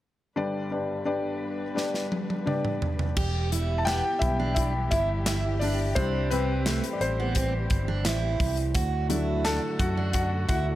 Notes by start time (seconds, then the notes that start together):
0.36 G1 G2 G3 B3 D4 G4 B4 D5
0.71 D4 G4 B4 D5
1.05 D4 G4 B4 D5
1.75 D4 G4 B4 D5, snare
1.94 snare
2.12 high tom
2.30 high tom
2.46 D4 G4 B4 D5, mid tom
2.65 mid tom
2.82 floor tom
2.99 floor tom
3.16 E1 E3 G3 B3 G4, kick, crash
3.52 E4, closed hi-hat
3.78 A5
3.85 B3 G4 G5, snare, clap, closed hi-hat
4.19 B1 G3 B3 E4 E5, kick, closed hi-hat
4.40 D4
4.55 E4 E5, kick, closed hi-hat
4.91 G1 E4 E5, kick, closed hi-hat
5.26 E4, snare, clap, closed hi-hat
5.59 D4 D5, open hi-hat
5.95 C2 E3 G3 C4 D4 E4 C5, kick, closed hi-hat
6.30 C4 B4, closed hi-hat
6.66 A3, snare, clap, closed hi-hat
6.84 closed hi-hat
6.93 D5
7.01 A1 C4 C5, closed hi-hat
7.20 B3
7.35 C4, kick, closed hi-hat
7.70 G1, kick, closed hi-hat
7.88 D4
8.05 A1 E4, snare, clap, closed hi-hat
8.40 C2, kick, open hi-hat
8.57 closed hi-hat
8.74 D2 D3 F#3 A3 F#4, kick, closed hi-hat
9.09 F#3 A3 D4 E4, closed hi-hat
9.44 D4 A4 A5, snare, clap, closed hi-hat
9.79 F#2 F#4 F#5, kick, closed hi-hat
9.97 D4
10.13 F#4 F#5, kick, closed hi-hat
10.48 D2 E4 F#4 F#5, kick, closed hi-hat